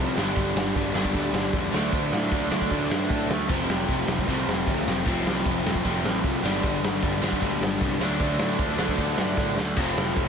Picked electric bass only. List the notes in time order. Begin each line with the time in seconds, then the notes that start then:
Already playing: C2
0.17 G1
0.36 G1
0.56 G1
0.75 G1
0.95 G1
1.14 D2
1.33 G1
1.53 E2
1.73 D2
1.92 D2
2.13 A2
2.31 D2
2.51 D2
2.71 D2
2.90 G2
3.10 A2
3.29 D2
3.49 F1
3.68 F1
3.89 F1
4.07 F1
4.28 C2
4.46 F1
4.67 D2
4.86 F1
5.06 F1
5.25 C2
5.46 F1
5.66 F1
5.85 F1
6.04 A1
6.24 C2
6.43 G1
6.63 G1
6.83 G1
7.03 G1
7.22 G1
7.42 D2
7.61 G1
7.81 C2
8.00 D2
8.20 D2
8.40 A2
8.59 D2
8.79 D2
8.98 D2
9.18 G2
9.37 A2
9.58 D2
9.77 F1
9.96 F1
10.17 F1